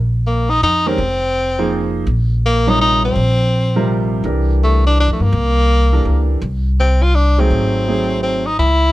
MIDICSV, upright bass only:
0, 0, Header, 1, 2, 480
1, 0, Start_track
1, 0, Tempo, 362319
1, 1306, Time_signature, 3, 2, 24, 8
1, 11819, End_track
2, 0, Start_track
2, 0, Title_t, "Upright bass"
2, 0, Program_c, 0, 32
2, 0, Note_on_c, 0, 34, 84
2, 773, Note_off_c, 0, 34, 0
2, 823, Note_on_c, 0, 41, 72
2, 1271, Note_off_c, 0, 41, 0
2, 1301, Note_on_c, 0, 29, 81
2, 2691, Note_off_c, 0, 29, 0
2, 2738, Note_on_c, 0, 34, 83
2, 4130, Note_off_c, 0, 34, 0
2, 4181, Note_on_c, 0, 34, 86
2, 5571, Note_off_c, 0, 34, 0
2, 5613, Note_on_c, 0, 36, 79
2, 6687, Note_off_c, 0, 36, 0
2, 6733, Note_on_c, 0, 41, 67
2, 6880, Note_off_c, 0, 41, 0
2, 6888, Note_on_c, 0, 43, 66
2, 7046, Note_off_c, 0, 43, 0
2, 7054, Note_on_c, 0, 36, 89
2, 7968, Note_off_c, 0, 36, 0
2, 8016, Note_on_c, 0, 37, 73
2, 8467, Note_off_c, 0, 37, 0
2, 8499, Note_on_c, 0, 36, 89
2, 9890, Note_off_c, 0, 36, 0
2, 9944, Note_on_c, 0, 32, 78
2, 11332, Note_off_c, 0, 32, 0
2, 11380, Note_on_c, 0, 37, 79
2, 11819, Note_off_c, 0, 37, 0
2, 11819, End_track
0, 0, End_of_file